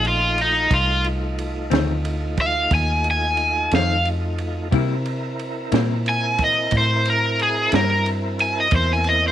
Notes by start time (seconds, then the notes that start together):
Already playing: A#1 A3 D#4 F4
0.05 F4, ride
0.38 D#4, ride
0.70 C2 A3 D#4 F4, kick, ride
1.04 ride
1.39 ride
1.70 D2 F2 D#3 A3 C4, snare, ride
2.05 ride
2.37 F5, kick, ride
2.71 D#2, kick, ride
2.75 G#5
3.04 ride
3.11 G#5
3.37 ride
3.71 F2 D#3 A3 C4 F5, snare, ride
4.05 ride
4.38 ride
4.71 C3 G3 A#3 C4 E4 A#4, kick, ride
5.05 ride
5.39 ride
5.72 A#2 C3 G3 A#3 E4, snare, ride
6.06 G#5, ride
6.38 kick, ride
6.44 D#5
6.71 A2, kick, ride
6.78 C5
7.05 ride
7.10 A#4
7.39 G#4, ride
7.72 G2 C3 G3 A#3 E4 A#4, snare, ride
8.06 ride
8.39 G#5, ride
8.60 D#5
8.71 E2 A#3 C4 E4, kick, ride
8.76 C5
8.93 G#5
9.04 ride
9.09 D#5
9.28 C5